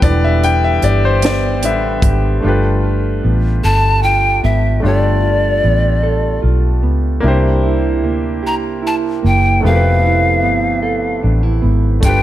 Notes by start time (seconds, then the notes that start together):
Already playing: B3 F4
0.02 E1 D3 E3 G3 B3 G4 D5, kick, closed hi-hat
0.24 E5
0.43 D4 G5, closed hi-hat
0.64 E5
0.82 G1 G4 D5, closed hi-hat
1.05 C5
1.22 B3 D5, snare, closed hi-hat
1.63 A1 D3 G3 B3 D4 E5, closed hi-hat
2.02 G#1 G4, kick, closed hi-hat
2.40 G1 G3 A3 D4 A4
2.45 F4 G4 B4
2.83 F4
3.23 A1 B3
3.64 G1 A4 A5
4.03 F4 G5
4.43 G#1 B3 E5
4.80 G3 A3 D4 F4 A4
4.84 G1 G4 A4 D5
5.23 F4
5.63 A1 B3
6.03 A4
6.42 B1 F4
6.83 C#2 B3
7.20 C2 C3 A#3 D4 E4 G4
7.26 G4 C5
7.63 E4
8.03 D2 A#3
8.43 C2 G4 A#5
8.82 E4
8.87 A5
9.23 F#1 A#3 G5
9.61 F1 C3 F3 A3 B3 A4
9.66 G4 A#4 F5
9.75 B4
10.04 E4
10.43 G1 B3
10.83 A4
11.23 A1 D4
11.43 E4
11.62 G#1 B3
12.01 G1 G3 A3 D4 F4 A4 G5, kick, closed hi-hat
12.07 G4 B4